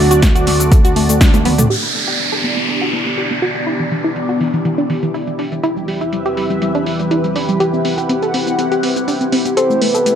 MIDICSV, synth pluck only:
0, 0, Header, 1, 2, 480
1, 0, Start_track
1, 0, Key_signature, 1, "minor"
1, 0, Tempo, 491803
1, 1660, Time_signature, 4, 2, 24, 8
1, 9909, End_track
2, 0, Start_track
2, 0, Title_t, "Synth pluck"
2, 0, Program_c, 0, 84
2, 106, Note_on_c, 0, 66, 88
2, 182, Note_off_c, 0, 66, 0
2, 220, Note_on_c, 0, 57, 64
2, 305, Note_off_c, 0, 57, 0
2, 346, Note_on_c, 0, 66, 92
2, 422, Note_off_c, 0, 66, 0
2, 459, Note_on_c, 0, 57, 60
2, 544, Note_off_c, 0, 57, 0
2, 586, Note_on_c, 0, 57, 62
2, 662, Note_off_c, 0, 57, 0
2, 699, Note_on_c, 0, 57, 67
2, 784, Note_off_c, 0, 57, 0
2, 826, Note_on_c, 0, 66, 93
2, 902, Note_off_c, 0, 66, 0
2, 939, Note_on_c, 0, 57, 65
2, 1024, Note_off_c, 0, 57, 0
2, 1066, Note_on_c, 0, 57, 66
2, 1142, Note_off_c, 0, 57, 0
2, 1179, Note_on_c, 0, 62, 92
2, 1264, Note_off_c, 0, 62, 0
2, 1307, Note_on_c, 0, 57, 62
2, 1382, Note_off_c, 0, 57, 0
2, 1420, Note_on_c, 0, 59, 87
2, 1505, Note_off_c, 0, 59, 0
2, 1547, Note_on_c, 0, 57, 63
2, 1622, Note_off_c, 0, 57, 0
2, 1660, Note_on_c, 0, 67, 96
2, 1745, Note_off_c, 0, 67, 0
2, 1787, Note_on_c, 0, 59, 57
2, 1862, Note_off_c, 0, 59, 0
2, 1900, Note_on_c, 0, 59, 59
2, 1985, Note_off_c, 0, 59, 0
2, 2027, Note_on_c, 0, 67, 84
2, 2103, Note_off_c, 0, 67, 0
2, 2140, Note_on_c, 0, 59, 59
2, 2225, Note_off_c, 0, 59, 0
2, 2267, Note_on_c, 0, 69, 84
2, 2342, Note_off_c, 0, 69, 0
2, 2380, Note_on_c, 0, 59, 59
2, 2465, Note_off_c, 0, 59, 0
2, 2507, Note_on_c, 0, 59, 55
2, 2582, Note_off_c, 0, 59, 0
2, 2621, Note_on_c, 0, 59, 60
2, 2705, Note_off_c, 0, 59, 0
2, 2748, Note_on_c, 0, 66, 86
2, 2823, Note_off_c, 0, 66, 0
2, 2860, Note_on_c, 0, 59, 61
2, 2945, Note_off_c, 0, 59, 0
2, 2987, Note_on_c, 0, 59, 59
2, 3062, Note_off_c, 0, 59, 0
2, 3100, Note_on_c, 0, 67, 85
2, 3185, Note_off_c, 0, 67, 0
2, 3228, Note_on_c, 0, 59, 56
2, 3303, Note_off_c, 0, 59, 0
2, 3340, Note_on_c, 0, 66, 83
2, 3425, Note_off_c, 0, 66, 0
2, 3468, Note_on_c, 0, 59, 60
2, 3543, Note_off_c, 0, 59, 0
2, 3580, Note_on_c, 0, 64, 97
2, 3665, Note_off_c, 0, 64, 0
2, 3707, Note_on_c, 0, 52, 58
2, 3783, Note_off_c, 0, 52, 0
2, 3821, Note_on_c, 0, 52, 60
2, 3905, Note_off_c, 0, 52, 0
2, 3948, Note_on_c, 0, 64, 84
2, 4023, Note_off_c, 0, 64, 0
2, 4060, Note_on_c, 0, 52, 59
2, 4145, Note_off_c, 0, 52, 0
2, 4187, Note_on_c, 0, 66, 90
2, 4262, Note_off_c, 0, 66, 0
2, 4299, Note_on_c, 0, 52, 60
2, 4384, Note_off_c, 0, 52, 0
2, 4427, Note_on_c, 0, 52, 57
2, 4502, Note_off_c, 0, 52, 0
2, 4540, Note_on_c, 0, 52, 59
2, 4624, Note_off_c, 0, 52, 0
2, 4667, Note_on_c, 0, 62, 93
2, 4742, Note_off_c, 0, 62, 0
2, 4780, Note_on_c, 0, 52, 60
2, 4864, Note_off_c, 0, 52, 0
2, 4907, Note_on_c, 0, 52, 63
2, 4982, Note_off_c, 0, 52, 0
2, 5020, Note_on_c, 0, 64, 87
2, 5105, Note_off_c, 0, 64, 0
2, 5147, Note_on_c, 0, 52, 60
2, 5222, Note_off_c, 0, 52, 0
2, 5260, Note_on_c, 0, 62, 84
2, 5345, Note_off_c, 0, 62, 0
2, 5387, Note_on_c, 0, 52, 59
2, 5462, Note_off_c, 0, 52, 0
2, 5500, Note_on_c, 0, 64, 96
2, 5585, Note_off_c, 0, 64, 0
2, 5627, Note_on_c, 0, 55, 60
2, 5702, Note_off_c, 0, 55, 0
2, 5740, Note_on_c, 0, 55, 60
2, 5825, Note_off_c, 0, 55, 0
2, 5867, Note_on_c, 0, 64, 85
2, 5942, Note_off_c, 0, 64, 0
2, 5980, Note_on_c, 0, 55, 61
2, 6065, Note_off_c, 0, 55, 0
2, 6106, Note_on_c, 0, 67, 90
2, 6182, Note_off_c, 0, 67, 0
2, 6220, Note_on_c, 0, 55, 61
2, 6304, Note_off_c, 0, 55, 0
2, 6346, Note_on_c, 0, 55, 57
2, 6422, Note_off_c, 0, 55, 0
2, 6459, Note_on_c, 0, 55, 62
2, 6544, Note_off_c, 0, 55, 0
2, 6586, Note_on_c, 0, 62, 89
2, 6662, Note_off_c, 0, 62, 0
2, 6699, Note_on_c, 0, 55, 63
2, 6784, Note_off_c, 0, 55, 0
2, 6827, Note_on_c, 0, 55, 62
2, 6902, Note_off_c, 0, 55, 0
2, 6940, Note_on_c, 0, 64, 87
2, 7025, Note_off_c, 0, 64, 0
2, 7067, Note_on_c, 0, 55, 57
2, 7142, Note_off_c, 0, 55, 0
2, 7180, Note_on_c, 0, 62, 88
2, 7265, Note_off_c, 0, 62, 0
2, 7308, Note_on_c, 0, 55, 61
2, 7383, Note_off_c, 0, 55, 0
2, 7420, Note_on_c, 0, 67, 93
2, 7505, Note_off_c, 0, 67, 0
2, 7548, Note_on_c, 0, 60, 59
2, 7623, Note_off_c, 0, 60, 0
2, 7661, Note_on_c, 0, 60, 63
2, 7745, Note_off_c, 0, 60, 0
2, 7788, Note_on_c, 0, 67, 81
2, 7863, Note_off_c, 0, 67, 0
2, 7900, Note_on_c, 0, 60, 61
2, 7985, Note_off_c, 0, 60, 0
2, 8027, Note_on_c, 0, 69, 86
2, 8102, Note_off_c, 0, 69, 0
2, 8141, Note_on_c, 0, 60, 59
2, 8225, Note_off_c, 0, 60, 0
2, 8268, Note_on_c, 0, 60, 59
2, 8343, Note_off_c, 0, 60, 0
2, 8381, Note_on_c, 0, 60, 59
2, 8465, Note_off_c, 0, 60, 0
2, 8507, Note_on_c, 0, 67, 93
2, 8582, Note_off_c, 0, 67, 0
2, 8621, Note_on_c, 0, 60, 62
2, 8705, Note_off_c, 0, 60, 0
2, 8747, Note_on_c, 0, 60, 63
2, 8822, Note_off_c, 0, 60, 0
2, 8861, Note_on_c, 0, 62, 85
2, 8945, Note_off_c, 0, 62, 0
2, 8987, Note_on_c, 0, 60, 58
2, 9063, Note_off_c, 0, 60, 0
2, 9100, Note_on_c, 0, 60, 85
2, 9185, Note_off_c, 0, 60, 0
2, 9228, Note_on_c, 0, 60, 60
2, 9303, Note_off_c, 0, 60, 0
2, 9340, Note_on_c, 0, 69, 99
2, 9425, Note_off_c, 0, 69, 0
2, 9467, Note_on_c, 0, 57, 59
2, 9543, Note_off_c, 0, 57, 0
2, 9580, Note_on_c, 0, 57, 60
2, 9665, Note_off_c, 0, 57, 0
2, 9707, Note_on_c, 0, 69, 84
2, 9782, Note_off_c, 0, 69, 0
2, 9820, Note_on_c, 0, 57, 60
2, 9905, Note_off_c, 0, 57, 0
2, 9909, End_track
0, 0, End_of_file